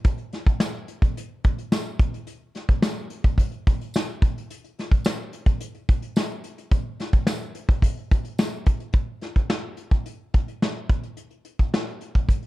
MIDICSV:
0, 0, Header, 1, 2, 480
1, 0, Start_track
1, 0, Tempo, 557103
1, 34, Time_signature, 4, 2, 24, 8
1, 10743, End_track
2, 0, Start_track
2, 0, Title_t, "Drums"
2, 38, Note_on_c, 9, 42, 90
2, 41, Note_on_c, 9, 36, 114
2, 124, Note_off_c, 9, 42, 0
2, 127, Note_off_c, 9, 36, 0
2, 154, Note_on_c, 9, 42, 39
2, 240, Note_off_c, 9, 42, 0
2, 281, Note_on_c, 9, 42, 64
2, 287, Note_on_c, 9, 38, 30
2, 367, Note_off_c, 9, 42, 0
2, 373, Note_off_c, 9, 38, 0
2, 400, Note_on_c, 9, 36, 85
2, 402, Note_on_c, 9, 42, 53
2, 487, Note_off_c, 9, 36, 0
2, 488, Note_off_c, 9, 42, 0
2, 517, Note_on_c, 9, 38, 101
2, 527, Note_on_c, 9, 54, 76
2, 603, Note_off_c, 9, 38, 0
2, 613, Note_off_c, 9, 54, 0
2, 759, Note_on_c, 9, 42, 74
2, 845, Note_off_c, 9, 42, 0
2, 879, Note_on_c, 9, 36, 99
2, 884, Note_on_c, 9, 42, 57
2, 965, Note_off_c, 9, 36, 0
2, 970, Note_off_c, 9, 42, 0
2, 1011, Note_on_c, 9, 42, 119
2, 1097, Note_off_c, 9, 42, 0
2, 1243, Note_on_c, 9, 42, 73
2, 1247, Note_on_c, 9, 36, 96
2, 1329, Note_off_c, 9, 42, 0
2, 1333, Note_off_c, 9, 36, 0
2, 1364, Note_on_c, 9, 42, 62
2, 1451, Note_off_c, 9, 42, 0
2, 1482, Note_on_c, 9, 38, 83
2, 1483, Note_on_c, 9, 54, 79
2, 1568, Note_off_c, 9, 38, 0
2, 1569, Note_off_c, 9, 54, 0
2, 1602, Note_on_c, 9, 42, 34
2, 1688, Note_off_c, 9, 42, 0
2, 1718, Note_on_c, 9, 36, 118
2, 1721, Note_on_c, 9, 42, 83
2, 1805, Note_off_c, 9, 36, 0
2, 1808, Note_off_c, 9, 42, 0
2, 1844, Note_on_c, 9, 42, 64
2, 1930, Note_off_c, 9, 42, 0
2, 1955, Note_on_c, 9, 42, 102
2, 2041, Note_off_c, 9, 42, 0
2, 2196, Note_on_c, 9, 42, 57
2, 2203, Note_on_c, 9, 38, 34
2, 2282, Note_off_c, 9, 42, 0
2, 2289, Note_off_c, 9, 38, 0
2, 2315, Note_on_c, 9, 42, 56
2, 2316, Note_on_c, 9, 36, 84
2, 2401, Note_off_c, 9, 42, 0
2, 2402, Note_off_c, 9, 36, 0
2, 2433, Note_on_c, 9, 38, 115
2, 2438, Note_on_c, 9, 54, 77
2, 2519, Note_off_c, 9, 38, 0
2, 2524, Note_off_c, 9, 54, 0
2, 2671, Note_on_c, 9, 42, 80
2, 2757, Note_off_c, 9, 42, 0
2, 2793, Note_on_c, 9, 36, 92
2, 2802, Note_on_c, 9, 42, 55
2, 2880, Note_off_c, 9, 36, 0
2, 2888, Note_off_c, 9, 42, 0
2, 2910, Note_on_c, 9, 36, 87
2, 2922, Note_on_c, 9, 42, 119
2, 2996, Note_off_c, 9, 36, 0
2, 3008, Note_off_c, 9, 42, 0
2, 3029, Note_on_c, 9, 42, 38
2, 3115, Note_off_c, 9, 42, 0
2, 3161, Note_on_c, 9, 42, 75
2, 3162, Note_on_c, 9, 36, 100
2, 3247, Note_off_c, 9, 42, 0
2, 3248, Note_off_c, 9, 36, 0
2, 3284, Note_on_c, 9, 42, 58
2, 3370, Note_off_c, 9, 42, 0
2, 3394, Note_on_c, 9, 54, 88
2, 3409, Note_on_c, 9, 38, 101
2, 3480, Note_off_c, 9, 54, 0
2, 3495, Note_off_c, 9, 38, 0
2, 3526, Note_on_c, 9, 42, 35
2, 3612, Note_off_c, 9, 42, 0
2, 3637, Note_on_c, 9, 36, 112
2, 3644, Note_on_c, 9, 42, 89
2, 3723, Note_off_c, 9, 36, 0
2, 3731, Note_off_c, 9, 42, 0
2, 3772, Note_on_c, 9, 42, 55
2, 3858, Note_off_c, 9, 42, 0
2, 3880, Note_on_c, 9, 42, 100
2, 3966, Note_off_c, 9, 42, 0
2, 4001, Note_on_c, 9, 42, 34
2, 4087, Note_off_c, 9, 42, 0
2, 4124, Note_on_c, 9, 42, 58
2, 4130, Note_on_c, 9, 38, 33
2, 4210, Note_off_c, 9, 42, 0
2, 4216, Note_off_c, 9, 38, 0
2, 4235, Note_on_c, 9, 36, 81
2, 4241, Note_on_c, 9, 42, 52
2, 4321, Note_off_c, 9, 36, 0
2, 4327, Note_off_c, 9, 42, 0
2, 4348, Note_on_c, 9, 54, 88
2, 4358, Note_on_c, 9, 38, 110
2, 4434, Note_off_c, 9, 54, 0
2, 4444, Note_off_c, 9, 38, 0
2, 4591, Note_on_c, 9, 42, 77
2, 4677, Note_off_c, 9, 42, 0
2, 4707, Note_on_c, 9, 36, 94
2, 4716, Note_on_c, 9, 42, 55
2, 4793, Note_off_c, 9, 36, 0
2, 4802, Note_off_c, 9, 42, 0
2, 4829, Note_on_c, 9, 42, 121
2, 4915, Note_off_c, 9, 42, 0
2, 4950, Note_on_c, 9, 42, 37
2, 5037, Note_off_c, 9, 42, 0
2, 5074, Note_on_c, 9, 36, 99
2, 5074, Note_on_c, 9, 42, 79
2, 5160, Note_off_c, 9, 36, 0
2, 5160, Note_off_c, 9, 42, 0
2, 5189, Note_on_c, 9, 42, 60
2, 5275, Note_off_c, 9, 42, 0
2, 5307, Note_on_c, 9, 54, 76
2, 5314, Note_on_c, 9, 38, 93
2, 5393, Note_off_c, 9, 54, 0
2, 5400, Note_off_c, 9, 38, 0
2, 5425, Note_on_c, 9, 42, 38
2, 5512, Note_off_c, 9, 42, 0
2, 5547, Note_on_c, 9, 42, 77
2, 5633, Note_off_c, 9, 42, 0
2, 5670, Note_on_c, 9, 42, 60
2, 5757, Note_off_c, 9, 42, 0
2, 5784, Note_on_c, 9, 42, 102
2, 5786, Note_on_c, 9, 36, 98
2, 5871, Note_off_c, 9, 42, 0
2, 5872, Note_off_c, 9, 36, 0
2, 6028, Note_on_c, 9, 42, 66
2, 6034, Note_on_c, 9, 38, 35
2, 6114, Note_off_c, 9, 42, 0
2, 6120, Note_off_c, 9, 38, 0
2, 6142, Note_on_c, 9, 42, 52
2, 6145, Note_on_c, 9, 36, 88
2, 6228, Note_off_c, 9, 42, 0
2, 6231, Note_off_c, 9, 36, 0
2, 6261, Note_on_c, 9, 38, 107
2, 6268, Note_on_c, 9, 54, 81
2, 6347, Note_off_c, 9, 38, 0
2, 6354, Note_off_c, 9, 54, 0
2, 6396, Note_on_c, 9, 42, 36
2, 6482, Note_off_c, 9, 42, 0
2, 6503, Note_on_c, 9, 42, 78
2, 6590, Note_off_c, 9, 42, 0
2, 6623, Note_on_c, 9, 36, 102
2, 6634, Note_on_c, 9, 42, 56
2, 6709, Note_off_c, 9, 36, 0
2, 6720, Note_off_c, 9, 42, 0
2, 6741, Note_on_c, 9, 36, 101
2, 6749, Note_on_c, 9, 42, 125
2, 6827, Note_off_c, 9, 36, 0
2, 6835, Note_off_c, 9, 42, 0
2, 6867, Note_on_c, 9, 42, 38
2, 6953, Note_off_c, 9, 42, 0
2, 6991, Note_on_c, 9, 42, 68
2, 6992, Note_on_c, 9, 36, 102
2, 7077, Note_off_c, 9, 42, 0
2, 7078, Note_off_c, 9, 36, 0
2, 7104, Note_on_c, 9, 42, 60
2, 7191, Note_off_c, 9, 42, 0
2, 7225, Note_on_c, 9, 54, 82
2, 7228, Note_on_c, 9, 38, 92
2, 7311, Note_off_c, 9, 54, 0
2, 7314, Note_off_c, 9, 38, 0
2, 7462, Note_on_c, 9, 42, 89
2, 7467, Note_on_c, 9, 36, 95
2, 7548, Note_off_c, 9, 42, 0
2, 7553, Note_off_c, 9, 36, 0
2, 7583, Note_on_c, 9, 42, 53
2, 7669, Note_off_c, 9, 42, 0
2, 7691, Note_on_c, 9, 42, 81
2, 7701, Note_on_c, 9, 36, 99
2, 7777, Note_off_c, 9, 42, 0
2, 7787, Note_off_c, 9, 36, 0
2, 7939, Note_on_c, 9, 42, 51
2, 7946, Note_on_c, 9, 38, 29
2, 8026, Note_off_c, 9, 42, 0
2, 8032, Note_off_c, 9, 38, 0
2, 8064, Note_on_c, 9, 36, 82
2, 8066, Note_on_c, 9, 42, 44
2, 8150, Note_off_c, 9, 36, 0
2, 8152, Note_off_c, 9, 42, 0
2, 8183, Note_on_c, 9, 38, 98
2, 8269, Note_off_c, 9, 38, 0
2, 8417, Note_on_c, 9, 42, 67
2, 8503, Note_off_c, 9, 42, 0
2, 8542, Note_on_c, 9, 36, 86
2, 8545, Note_on_c, 9, 42, 46
2, 8628, Note_off_c, 9, 36, 0
2, 8631, Note_off_c, 9, 42, 0
2, 8666, Note_on_c, 9, 42, 113
2, 8752, Note_off_c, 9, 42, 0
2, 8907, Note_on_c, 9, 42, 66
2, 8911, Note_on_c, 9, 36, 85
2, 8993, Note_off_c, 9, 42, 0
2, 8997, Note_off_c, 9, 36, 0
2, 9030, Note_on_c, 9, 42, 54
2, 9116, Note_off_c, 9, 42, 0
2, 9153, Note_on_c, 9, 38, 83
2, 9239, Note_off_c, 9, 38, 0
2, 9387, Note_on_c, 9, 36, 101
2, 9388, Note_on_c, 9, 42, 76
2, 9473, Note_off_c, 9, 36, 0
2, 9474, Note_off_c, 9, 42, 0
2, 9506, Note_on_c, 9, 42, 47
2, 9592, Note_off_c, 9, 42, 0
2, 9623, Note_on_c, 9, 42, 83
2, 9709, Note_off_c, 9, 42, 0
2, 9740, Note_on_c, 9, 42, 35
2, 9826, Note_off_c, 9, 42, 0
2, 9864, Note_on_c, 9, 42, 55
2, 9950, Note_off_c, 9, 42, 0
2, 9989, Note_on_c, 9, 36, 73
2, 9991, Note_on_c, 9, 42, 45
2, 10075, Note_off_c, 9, 36, 0
2, 10077, Note_off_c, 9, 42, 0
2, 10112, Note_on_c, 9, 38, 99
2, 10199, Note_off_c, 9, 38, 0
2, 10237, Note_on_c, 9, 42, 29
2, 10323, Note_off_c, 9, 42, 0
2, 10346, Note_on_c, 9, 42, 61
2, 10432, Note_off_c, 9, 42, 0
2, 10469, Note_on_c, 9, 36, 78
2, 10474, Note_on_c, 9, 42, 48
2, 10555, Note_off_c, 9, 36, 0
2, 10561, Note_off_c, 9, 42, 0
2, 10585, Note_on_c, 9, 36, 86
2, 10595, Note_on_c, 9, 42, 106
2, 10672, Note_off_c, 9, 36, 0
2, 10682, Note_off_c, 9, 42, 0
2, 10705, Note_on_c, 9, 42, 32
2, 10743, Note_off_c, 9, 42, 0
2, 10743, End_track
0, 0, End_of_file